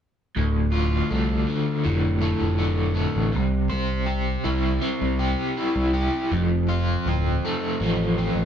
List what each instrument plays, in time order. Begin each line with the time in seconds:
0.37 picked electric bass D1, overdriven electric guitar D2
0.72 overdriven electric guitar F4
1.10 picked electric bass C2, overdriven electric guitar A3
1.48 overdriven electric guitar D3
1.85 picked electric bass F1, overdriven electric guitar A2
2.21 overdriven electric guitar A3
2.42 picked electric bass F1
2.59 overdriven electric guitar D3
2.95 overdriven electric guitar A3
3.16 picked electric bass A1
3.32 picked electric bass C2, overdriven electric guitar C3
3.70 picked electric bass C2, overdriven electric guitar C5
4.06 overdriven electric guitar G4
4.44 picked electric bass C2, overdriven electric guitar E4
4.82 overdriven electric guitar C4
5.02 picked electric bass C2
5.19 overdriven electric guitar G4
5.57 overdriven electric guitar E4
5.76 picked electric bass C2
5.94 overdriven electric guitar G4
6.32 picked electric bass F1, overdriven electric guitar F2
6.69 overdriven electric guitar F4
7.06 picked electric bass D1, overdriven electric guitar C4
7.45 overdriven electric guitar A3
7.81 picked electric bass A1, overdriven electric guitar F3
8.18 overdriven electric guitar C4
8.36 picked electric bass A1